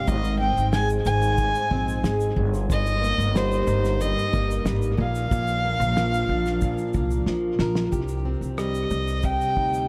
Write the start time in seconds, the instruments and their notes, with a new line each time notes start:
Already playing: steel-string acoustic guitar C3 G3 C4 D#4 G4, ambient pad C5
0.07 upright bass G#1, steel-string acoustic guitar G#2, ambient pad G#3 D#4, violin D#5, kick, shaker
0.24 shaker
0.40 steel-string acoustic guitar C4, violin G5
0.57 upright bass G#1, shaker
0.73 steel-string acoustic guitar G#3, violin G#5, snare, shaker
0.90 shaker
1.05 upright bass G#1, steel-string acoustic guitar D#4, violin G#5, shaker
1.22 shaker
1.38 steel-string acoustic guitar G#2, kick, shaker
1.55 shaker
1.71 upright bass A#1, steel-string acoustic guitar C4, kick
1.88 shaker
2.03 upright bass G#1, steel-string acoustic guitar G#3, snare, shaker
2.20 shaker
2.36 upright bass G1, steel-string acoustic guitar G2, ambient pad G3 A#4, kick
2.54 shaker
2.70 steel-string acoustic guitar G2, violin D#5, kick, shaker
2.86 shaker
3.01 steel-string acoustic guitar A#3, shaker
3.18 upright bass G1, shaker
3.35 steel-string acoustic guitar G3, violin C5, snare, shaker
3.52 shaker
3.67 upright bass G1, steel-string acoustic guitar D#4, shaker
3.85 snare, shaker
4.01 steel-string acoustic guitar G2, violin D#5, shaker
4.18 shaker
4.33 upright bass G1, steel-string acoustic guitar A#3, kick, shaker
4.51 shaker
4.65 upright bass G#1, steel-string acoustic guitar G3, snare, shaker
4.82 shaker
4.97 upright bass A#1, steel-string acoustic guitar A#2, ambient pad F3 D4, violin F5, kick
5.15 shaker
5.31 upright bass A#1, steel-string acoustic guitar A#2, kick, shaker
5.47 shaker
5.65 steel-string acoustic guitar A#3
5.80 upright bass A#1, shaker
5.97 steel-string acoustic guitar F3, snare, shaker
6.14 shaker
6.29 upright bass A#1, steel-string acoustic guitar D4
6.46 snare, shaker
6.61 steel-string acoustic guitar A#2, kick, shaker
6.78 shaker
6.94 upright bass C2, steel-string acoustic guitar A#3, kick, shaker
7.11 shaker
7.26 upright bass A#1, steel-string acoustic guitar F3, snare
7.59 upright bass A#1, steel-string acoustic guitar A#4, snare
7.75 snare
7.91 upright bass C2, steel-string acoustic guitar C3 G4, kick, shaker
8.08 shaker
8.25 steel-string acoustic guitar C4
8.41 upright bass C2, shaker
8.58 steel-string acoustic guitar G3, violin D#5, cross-stick, shaker
8.74 shaker
8.90 upright bass C2, shaker
9.07 cross-stick, shaker
9.23 steel-string acoustic guitar C3, violin G5, kick, shaker
9.41 shaker
9.57 upright bass D2, steel-string acoustic guitar D#4, kick
9.74 shaker